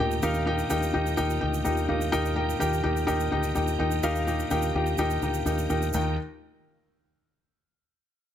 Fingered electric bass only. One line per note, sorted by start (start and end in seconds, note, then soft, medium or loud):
0.00 0.19 D#2 loud
0.23 0.62 D#2 loud
0.71 0.90 D#2 medium
0.95 1.14 D#2 loud
1.19 1.38 D#2 medium
1.42 1.61 D2 medium
1.66 1.85 D#2 loud
1.90 2.09 D#2 loud
2.14 2.52 D#2 loud
2.61 2.80 D#2 loud
2.84 3.04 D#2 loud
3.08 3.28 D#2 loud
3.32 3.51 D2 medium
3.56 3.75 D#2 loud
3.80 3.99 D#2 loud
4.03 4.42 D#2 loud
4.51 4.70 D#2 loud
4.75 4.94 D#2 loud
4.98 5.17 D#2 loud
5.22 5.41 D2 medium
5.46 5.65 D#2 loud
5.70 5.89 D#2 loud
5.94 6.16 D#2 loud